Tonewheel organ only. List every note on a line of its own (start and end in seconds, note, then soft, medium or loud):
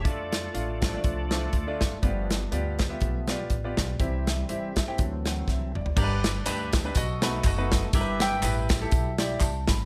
0.06 1.00 F4 medium
0.06 1.01 A4 medium
0.06 1.03 D5 medium
0.81 1.49 F3 soft
0.81 1.49 A3 soft
0.81 1.49 D4 soft
1.04 1.99 F4 medium
1.04 1.99 A4 medium
1.04 1.77 D5 medium
2.03 2.37 F3 soft
2.03 2.37 A3 soft
2.03 2.38 B3 soft
3.02 3.27 F3 soft
3.02 3.27 A3 soft
3.02 3.27 B3 soft
3.99 4.73 E3 soft
3.99 4.73 G3 soft
3.99 4.73 C4 medium
4.99 5.72 E3 soft
4.99 5.72 F#3 soft
4.99 5.72 C4 soft